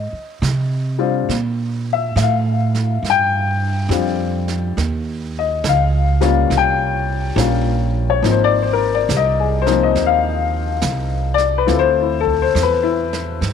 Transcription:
Already playing: upright piano D#5
0.13 muted upright bass stroke
0.42 upright bass C3, snare, hi-hat pedal
0.98 upright piano G3 C4 D4 F4
1.29 upright bass A#2, brush sweep, snare
1.93 upright piano E5
2.16 upright bass A2, upright piano E5, snare, hi-hat pedal
2.23 upright piano F5
2.75 snare
3.03 upright bass G2, brush sweep, snare
3.10 upright piano G5
3.89 upright bass F2, upright piano G3 C4 D4 F4, snare, hi-hat pedal
4.48 snare
4.77 upright bass D#2, brush sweep, snare
5.39 upright piano D#5
5.64 upright bass C#2, snare, hi-hat pedal
5.69 upright piano F5
6.21 upright piano G3 A#3 C#4 F4, snare
6.50 upright bass C2, brush sweep, snare
6.57 upright piano G5
7.35 upright bass A#1, upright piano G3 A#3 C#4 F4, snare, hi-hat pedal
8.10 upright piano C#5
8.22 upright bass G#1, upright piano F3 A#3 C4 D#4, brush sweep, snare
8.32 upright piano C5
8.44 upright piano D5
8.62 upright piano C5
8.73 upright piano A#4
8.95 upright piano D5
9.09 upright bass C2, snare, hi-hat pedal
9.17 upright piano D#5
9.40 upright piano G#4
9.62 upright piano C5
9.66 upright piano F3 A#3 C4 D#4, snare
9.83 upright piano D#5
9.95 upright bass D#2, brush sweep, snare
10.06 upright piano F5
10.82 upright bass C2, snare, hi-hat pedal
11.34 upright piano D5, snare
11.58 upright piano B4
11.67 upright bass D2, upright piano A3 C4 E4 F4, brush sweep, snare
11.79 upright piano C5
12.02 upright piano E4
12.20 upright piano A4
12.25 kick
12.42 upright piano C5
12.55 upright bass E2, snare, hi-hat pedal
12.63 upright piano B4
12.83 upright piano E4
13.13 snare
13.41 upright bass G2, brush sweep, snare

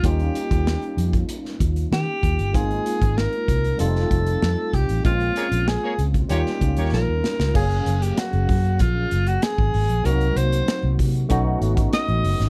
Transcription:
0.02 fingered electric bass D#2, tine electric piano G3 A#3 C#4 D#4 F4, alto saxophone G4, kick, closed hi-hat
0.19 closed hi-hat
0.35 closed hi-hat
0.51 fingered electric bass D#2, kick, closed hi-hat
0.67 snare
0.82 closed hi-hat
0.97 fingered electric bass F2, closed hi-hat
1.13 kick, closed hi-hat
1.29 closed hi-hat
1.45 snare
1.60 fingered electric bass D#2, kick, closed hi-hat
1.76 closed hi-hat
1.91 fingered electric bass D#3, alto saxophone G4, snare
2.23 fingered electric bass D#2, kick, closed hi-hat
2.39 fingered electric bass G1, closed hi-hat
2.53 fingered electric bass G#1, tine electric piano G#3 A#3 C4 D#4 F4, alto saxophone G#4, kick, closed hi-hat
2.71 closed hi-hat
2.86 closed hi-hat
3.02 fingered electric bass G#1, kick, closed hi-hat
3.17 alto saxophone A#4, snare
3.33 closed hi-hat
3.48 fingered electric bass C2, kick, closed hi-hat
3.64 closed hi-hat
3.78 fingered electric bass F1, tine electric piano G3 A3 C4 D#4 F4, alto saxophone A4, closed hi-hat
3.95 snare
4.11 fingered electric bass F1, kick, closed hi-hat
4.26 closed hi-hat
4.42 fingered electric bass F2, snare
4.73 fingered electric bass C2, alto saxophone G4, kick, closed hi-hat
4.89 fingered electric bass A1, closed hi-hat
5.04 fingered electric bass A#1, tine electric piano G#3 A#3 C4 C#4 F4, alto saxophone F4, kick, closed hi-hat
5.20 closed hi-hat
5.36 horn section A#3 G#4 C#5, closed hi-hat
5.51 fingered electric bass A#1, closed hi-hat
5.68 alto saxophone G#4, snare
5.83 horn section A#3 G#4 C#5
5.98 fingered electric bass C#2, closed hi-hat
6.14 kick, closed hi-hat
6.28 fingered electric bass D#2, tine electric piano G3 A#3 C#4 D#4 F4, horn section A#3 G4 C#5, alto saxophone G4, closed hi-hat
6.46 snare
6.61 fingered electric bass C#2, kick, closed hi-hat
6.77 fingered electric bass D#2, horn section A#3 G4 C#5, closed hi-hat
6.92 fingered electric bass A#1, alto saxophone A#4, snare
7.08 fingered electric bass D#2
7.24 snare
7.39 fingered electric bass C#2, snare
7.54 fingered electric bass F#1, tine electric piano F#3 A#3 C#4 G#4 F5, alto saxophone G#4, kick, crash
7.71 closed hi-hat
7.86 fingered electric bass F#1, closed hi-hat
8.02 alto saxophone G4, closed hi-hat
8.17 alto saxophone F#4, snare, closed hi-hat
8.33 fingered electric bass F#1, closed hi-hat
8.49 fingered electric bass F#2, kick, open hi-hat
8.65 closed hi-hat
8.79 fingered electric bass A#1, alto saxophone F4, kick, closed hi-hat
9.11 fingered electric bass F#1, closed hi-hat
9.27 alto saxophone F#4, closed hi-hat
9.42 alto saxophone G#4, snare, closed hi-hat
9.58 fingered electric bass G#1, kick
9.74 fingered electric bass G#1, open hi-hat
9.89 fingered electric bass A#1, closed hi-hat
10.04 fingered electric bass C2, tine electric piano F#3 A#3 C4 D#4 F#4, alto saxophone A#4, closed hi-hat
10.21 closed hi-hat
10.36 fingered electric bass C2, alto saxophone C5, closed hi-hat
10.52 closed hi-hat
10.68 snare, closed hi-hat
10.83 fingered electric bass C2
10.99 fingered electric bass C3, kick, open hi-hat
11.15 closed hi-hat
11.29 fingered electric bass B1, tine electric piano A3 B3 C#4 D#4 F#4, kick, closed hi-hat
11.61 fingered electric bass G#1, closed hi-hat
11.77 kick, closed hi-hat
11.93 alto saxophone D#5, snare, closed hi-hat
12.08 fingered electric bass A1, closed hi-hat
12.24 fingered electric bass F#1, open hi-hat
12.40 fingered electric bass G#1, snare, closed hi-hat

